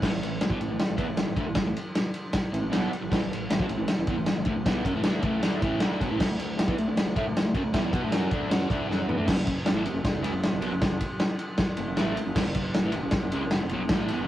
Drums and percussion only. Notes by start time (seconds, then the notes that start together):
0.02 kick, snare, crash
0.23 ride
0.41 snare, ride
0.50 kick
0.61 ride
0.79 snare, ride
0.98 kick, ride
1.17 snare, ride
1.37 kick, ride
1.55 kick, snare, ride
1.76 ride
1.95 snare, ride
2.14 ride
2.33 kick, snare, ride
2.54 ride
2.73 snare, ride
2.93 ride
3.12 kick, snare, crash
3.33 ride
3.50 snare, ride
3.60 kick
3.69 ride
3.88 snare, ride
4.07 kick, ride
4.26 snare, ride
4.45 kick, ride
4.66 kick, snare, ride
4.85 kick, ride
5.03 snare, ride
5.22 kick, ride
5.43 snare, ride
5.62 kick, ride
5.80 snare, ride
6.01 kick, ride
6.20 kick, snare, crash
6.39 ride
6.59 snare, ride
6.68 kick
6.78 ride
6.97 snare, ride
7.16 kick, ride
7.37 snare, ride
7.55 kick, ride
7.74 kick, snare, ride
7.93 kick, ride
8.12 snare, ride
8.31 kick, ride
8.51 snare, ride
8.70 kick, ride
8.91 snare
9.09 floor tom
9.28 kick, snare, crash
9.47 kick, ride
9.66 snare, ride
9.86 ride
10.05 kick, snare, ride
10.24 ride
10.43 snare, ride
10.62 ride
10.81 kick, snare, ride
11.01 kick, ride
11.20 snare, ride
11.39 ride
11.58 kick, snare, ride
11.77 ride
11.97 snare, ride
12.17 ride
12.36 kick, snare, crash
12.55 kick, ride
12.74 snare, ride
12.92 ride
13.11 kick, snare, ride
13.32 ride
13.51 snare, ride
13.69 ride
13.89 kick, snare, ride
14.08 ride